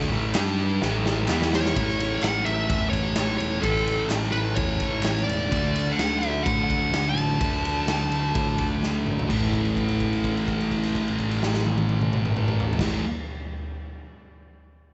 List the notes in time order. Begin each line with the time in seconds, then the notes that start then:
Already playing: D3 A3 D4
0.01 snare
0.10 A1 A2 E3 A3
0.34 G2 G3 D4 G4, snare, clap, open hi-hat
0.81 A1 A2 E3 A3, snare
1.06 snare
1.28 E2 E3 B3 E4, snare, clap
1.42 snare
1.53 C#5, snare
1.66 snare
1.75 A1 A2 E3, kick, ride
1.80 A3
1.88 snare
2.00 ride
2.22 A1 F#5, snare, clap, ride
2.44 A1 E5, ride
2.69 E2, kick, ride
2.89 A1 C#5, kick, ride
3.16 A1, snare, clap, ride
3.38 E1 C#5, ride
3.61 A1 A2 E3 A4, kick, ride
3.65 A3
3.76 snare
3.88 ride
4.09 A1, snare, clap, ride
4.32 A1 B4, ride
4.55 E2 C#5, kick, ride
4.80 A1, kick, ride
5.02 A1, snare, clap, ride
5.17 snare
5.23 E1 D5
5.29 ride
5.50 D2 D3 A3 D4, kick, ride
5.76 ride
5.92 F#5
5.97 D2, snare, ride
6.19 D2 E5
6.23 ride
6.43 A2 F#5, kick, ride
6.63 F#5
6.70 D2, kick, ride
6.91 D2, snare, ride
7.09 A5
7.14 A1, ride
7.39 D2 D3 A3, kick, ride
7.44 D4
7.65 ride
7.85 D2, snare, ride
8.10 D2, ride
8.35 A2, kick, ride
8.58 D2, kick, ride
8.81 D2, snare
9.04 A1, mid tom
9.19 floor tom
9.29 A1 A2 E3 A3, kick, crash
9.53 kick, crash
9.65 crash
9.77 kick, crash
9.88 crash
10.00 kick, crash
10.13 crash
10.24 kick, crash
10.37 crash
10.48 kick, crash
10.61 crash
10.71 kick, crash
10.83 crash
10.95 kick, crash
11.08 crash
11.19 kick, crash
11.31 crash
11.43 snare
11.54 snare
11.66 high tom
11.78 high tom
11.89 high tom
12.01 mid tom
12.13 mid tom
12.25 mid tom
12.36 mid tom
12.48 mid tom
12.60 floor tom
12.73 floor tom
12.79 A1 A2 E3 A3, kick, snare, crash